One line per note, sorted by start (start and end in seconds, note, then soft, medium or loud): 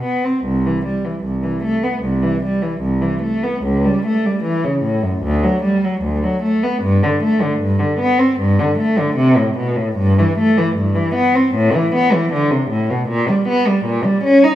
0.04 0.24 B3 soft
0.24 0.44 C4 soft
0.45 0.64 C2 medium
0.66 0.85 E3 soft
0.85 1.04 G3 soft
1.05 1.24 E3 soft
1.25 1.43 C2 soft
1.43 1.63 E3 soft
1.64 1.83 A3 medium
1.83 2.03 B3 soft
2.03 2.23 C2 medium
2.23 2.43 E3 medium
2.43 2.63 G3 medium
2.62 2.82 E3 medium
2.82 3.02 C2 medium
3.01 3.22 E3 soft
3.22 3.43 A3 soft
3.43 3.64 B3 medium
3.63 3.84 C#2 medium
3.85 4.05 G3 medium
4.06 4.25 A3 medium
4.26 4.46 G3 medium
4.44 4.64 E3 medium
4.64 4.84 C#3 medium
4.83 5.03 A2 medium
5.03 5.23 F#2 medium
5.23 5.43 D2 medium
5.43 5.63 F#3 medium
5.63 5.83 G3 medium
5.84 6.04 F#3 medium
6.03 6.23 D2 medium
6.23 6.43 F#3 medium
6.43 6.63 A3 medium
6.63 6.83 B3 medium
6.83 7.02 G2 medium
7.03 7.22 D3 medium
7.23 7.42 A3 medium
7.42 7.61 D3 medium
7.60 7.80 G2 medium
7.79 8.00 D3 medium
8.00 8.19 B3 medium
8.19 8.39 C4 medium
8.40 8.59 G2 medium
8.59 8.78 D3 medium
8.78 8.97 A3 medium
8.98 9.17 D3 medium
9.16 9.36 C3 medium
9.37 9.57 A2 medium
9.58 9.77 B2 medium
9.77 9.98 A2 medium
9.97 10.17 G2 medium
10.19 10.38 E3 medium
10.39 10.58 A3 medium
10.58 10.77 E3 medium
10.76 10.96 G2 medium
10.95 11.15 E3 medium
11.15 11.34 B3 medium
11.35 11.54 C4 medium
11.55 11.74 A2 medium
11.74 11.93 E3 medium
11.95 12.13 B3 medium
12.14 12.32 E3 medium
12.33 12.51 D3 medium
12.51 12.70 C3 medium
12.71 12.89 A2 medium
12.90 13.09 B2 medium
13.09 13.28 A#2 medium
13.29 13.48 G3 medium
13.48 13.67 B3 medium
13.67 13.86 G3 medium
13.85 14.05 A#2 medium
14.05 14.24 G3 medium
14.24 14.43 C#4 medium
14.44 14.55 D#4 medium